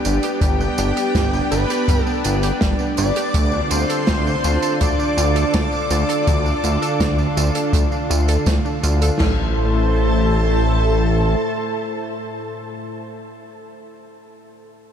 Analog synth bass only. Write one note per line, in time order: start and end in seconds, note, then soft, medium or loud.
0.05 0.19 G1 loud
0.41 0.69 G1 loud
0.79 0.92 G1 medium
1.15 1.42 G1 medium
1.52 1.65 G1 loud
1.88 2.02 G1 medium
2.25 2.52 G1 medium
2.62 2.75 G1 medium
2.98 3.12 G1 loud
3.34 3.61 D2 loud
3.71 3.85 D2 medium
4.09 4.35 D2 medium
4.44 4.58 D2 medium
4.81 4.95 D2 medium
5.17 5.45 D2 medium
5.54 5.68 D2 medium
5.91 6.04 D2 loud
6.27 6.54 D2 loud
6.64 6.77 D2 medium
7.00 7.27 D2 medium
7.37 7.51 D2 medium
7.73 7.87 D2 medium
8.10 8.37 D2 medium
8.47 8.60 D2 medium
8.84 9.10 D2 medium
9.20 11.35 A1 medium